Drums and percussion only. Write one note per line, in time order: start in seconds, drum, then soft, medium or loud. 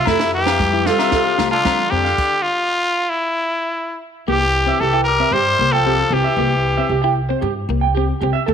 0.06 kick medium
0.06 snare medium
0.06 muted conga soft
0.06 low agogo medium
0.20 snare medium
0.47 snare medium
0.47 low agogo medium
0.60 kick medium
0.60 snare soft
0.60 high conga medium
0.86 snare medium
0.86 muted conga soft
0.86 high conga medium
0.99 snare medium
0.99 low agogo medium
1.12 kick medium
1.12 snare medium
1.12 muted conga soft
1.38 snare medium
1.38 muted conga soft
1.38 low agogo medium
1.65 kick medium
1.65 snare medium
1.65 high conga medium
1.65 low agogo medium
2.05 snare soft
2.18 kick medium
2.18 crash medium